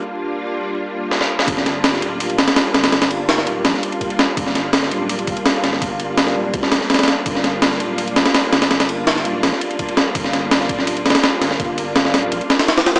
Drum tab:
RD |--------------------------------|x---x---x---x---x-x-x-x-x---x-x-|x-x-x---x---x---x---x-x-x-x-x---|x---x---x---x---x-x-x-x-x---x---|
SD |------------------------o-o---o-|--o-o---o-o---------o-o-o---o-o-|o-o-----o-o-----o-o---------o---|--o-o---o-o-------------o---o-o-|
BD |--------------------------------|o-------------------------------|------------------------o-------|o-------------------o-----------|

RD |x---x---x-------x---x---xxxxx---|x---x---x---x---x-x-x-x-x---x-x-|x-x-x---x---x---x---x-x-x-x-x---|x---x---x---x---x-x-xxx-x---x---|
SD |--------o-o-------o-o-o-ooooo---|--o-o---o-o---------o-o-o---o-o-|o-o-----o-o-----o-o---------o---|--o-o---o-o---o-----ooo-o---o-o-|
BD |o---------------o---------------|o-------------------------------|------------------------o-------|o-----------o-------------------|

RD |x---x---x---x---x-x-x-x-x-x-x-x-|
SD |--------o-o-o-------o-o-o-o-o-o-|
BD |o-------------------------------|